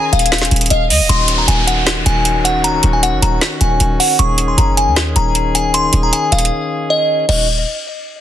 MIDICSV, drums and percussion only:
0, 0, Header, 1, 2, 480
1, 0, Start_track
1, 0, Tempo, 387097
1, 1357, Time_signature, 4, 2, 24, 8
1, 10178, End_track
2, 0, Start_track
2, 0, Title_t, "Drums"
2, 158, Note_on_c, 9, 42, 56
2, 238, Note_off_c, 9, 42, 0
2, 238, Note_on_c, 9, 42, 62
2, 318, Note_off_c, 9, 42, 0
2, 318, Note_on_c, 9, 42, 69
2, 396, Note_on_c, 9, 38, 124
2, 397, Note_off_c, 9, 42, 0
2, 397, Note_on_c, 9, 42, 77
2, 476, Note_off_c, 9, 42, 0
2, 476, Note_on_c, 9, 42, 86
2, 515, Note_off_c, 9, 38, 0
2, 515, Note_on_c, 9, 38, 67
2, 556, Note_off_c, 9, 42, 0
2, 556, Note_on_c, 9, 42, 91
2, 636, Note_off_c, 9, 42, 0
2, 636, Note_on_c, 9, 42, 64
2, 639, Note_off_c, 9, 38, 0
2, 697, Note_off_c, 9, 42, 0
2, 697, Note_on_c, 9, 42, 64
2, 757, Note_off_c, 9, 42, 0
2, 757, Note_on_c, 9, 42, 65
2, 817, Note_off_c, 9, 42, 0
2, 817, Note_on_c, 9, 42, 64
2, 873, Note_off_c, 9, 42, 0
2, 873, Note_on_c, 9, 42, 81
2, 997, Note_off_c, 9, 42, 0
2, 1121, Note_on_c, 9, 46, 90
2, 1245, Note_off_c, 9, 46, 0
2, 1356, Note_on_c, 9, 42, 82
2, 1480, Note_off_c, 9, 42, 0
2, 1587, Note_on_c, 9, 42, 80
2, 1711, Note_off_c, 9, 42, 0
2, 1836, Note_on_c, 9, 42, 86
2, 1960, Note_off_c, 9, 42, 0
2, 2078, Note_on_c, 9, 42, 87
2, 2202, Note_off_c, 9, 42, 0
2, 2313, Note_on_c, 9, 42, 85
2, 2314, Note_on_c, 9, 38, 122
2, 2437, Note_off_c, 9, 42, 0
2, 2438, Note_off_c, 9, 38, 0
2, 2554, Note_on_c, 9, 42, 71
2, 2678, Note_off_c, 9, 42, 0
2, 2791, Note_on_c, 9, 42, 79
2, 2915, Note_off_c, 9, 42, 0
2, 3039, Note_on_c, 9, 42, 90
2, 3163, Note_off_c, 9, 42, 0
2, 3276, Note_on_c, 9, 42, 81
2, 3400, Note_off_c, 9, 42, 0
2, 3507, Note_on_c, 9, 42, 80
2, 3631, Note_off_c, 9, 42, 0
2, 3757, Note_on_c, 9, 42, 88
2, 3881, Note_off_c, 9, 42, 0
2, 3999, Note_on_c, 9, 42, 90
2, 4123, Note_off_c, 9, 42, 0
2, 4234, Note_on_c, 9, 38, 121
2, 4234, Note_on_c, 9, 42, 85
2, 4358, Note_off_c, 9, 38, 0
2, 4358, Note_off_c, 9, 42, 0
2, 4473, Note_on_c, 9, 42, 69
2, 4597, Note_off_c, 9, 42, 0
2, 4713, Note_on_c, 9, 42, 76
2, 4837, Note_off_c, 9, 42, 0
2, 4960, Note_on_c, 9, 46, 88
2, 5084, Note_off_c, 9, 46, 0
2, 5197, Note_on_c, 9, 42, 85
2, 5321, Note_off_c, 9, 42, 0
2, 5429, Note_on_c, 9, 42, 81
2, 5553, Note_off_c, 9, 42, 0
2, 5679, Note_on_c, 9, 42, 87
2, 5803, Note_off_c, 9, 42, 0
2, 5920, Note_on_c, 9, 42, 89
2, 6044, Note_off_c, 9, 42, 0
2, 6155, Note_on_c, 9, 42, 84
2, 6156, Note_on_c, 9, 38, 121
2, 6279, Note_off_c, 9, 42, 0
2, 6280, Note_off_c, 9, 38, 0
2, 6396, Note_on_c, 9, 42, 71
2, 6520, Note_off_c, 9, 42, 0
2, 6634, Note_on_c, 9, 42, 77
2, 6758, Note_off_c, 9, 42, 0
2, 6881, Note_on_c, 9, 42, 89
2, 7005, Note_off_c, 9, 42, 0
2, 7117, Note_on_c, 9, 42, 84
2, 7241, Note_off_c, 9, 42, 0
2, 7349, Note_on_c, 9, 42, 83
2, 7473, Note_off_c, 9, 42, 0
2, 7598, Note_on_c, 9, 42, 91
2, 7722, Note_off_c, 9, 42, 0
2, 7837, Note_on_c, 9, 42, 54
2, 7917, Note_off_c, 9, 42, 0
2, 7917, Note_on_c, 9, 42, 63
2, 7998, Note_off_c, 9, 42, 0
2, 7998, Note_on_c, 9, 42, 68
2, 8122, Note_off_c, 9, 42, 0
2, 9037, Note_on_c, 9, 49, 86
2, 9161, Note_off_c, 9, 49, 0
2, 10178, End_track
0, 0, End_of_file